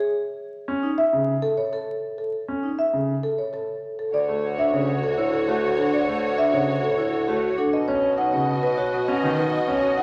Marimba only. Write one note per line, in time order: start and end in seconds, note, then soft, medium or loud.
0.00 0.12 G#4 medium
0.98 1.17 E5 medium
1.42 1.62 A4 medium
1.57 1.77 C#5 medium
1.73 1.92 A4 medium
2.18 2.38 A4 soft
2.79 2.98 E5 medium
3.23 3.43 A4 medium
3.38 3.58 C#5 soft
3.54 3.73 A4 soft
3.99 4.18 A4 soft
4.14 4.33 D5 medium
4.59 4.78 E5 medium
4.74 4.93 C#5 medium
5.04 5.23 A4 medium
5.18 5.38 C#5 medium
5.33 5.53 A4 medium
5.78 5.98 A4 medium
5.93 6.13 D5 medium
6.38 6.58 E5 medium
6.53 6.73 C#5 medium
6.83 7.03 A4 medium
6.98 7.18 C#5 medium
7.13 7.32 A4 medium
7.58 7.78 A4 medium
7.73 7.93 D#5 medium
8.18 8.37 F#5 medium
8.33 8.52 C#5 medium
8.63 8.83 B4 medium
8.78 8.97 C#5 medium
8.93 9.13 B4 medium
9.38 9.57 B4 medium
9.53 9.72 D#5 medium
9.97 10.03 F#5 medium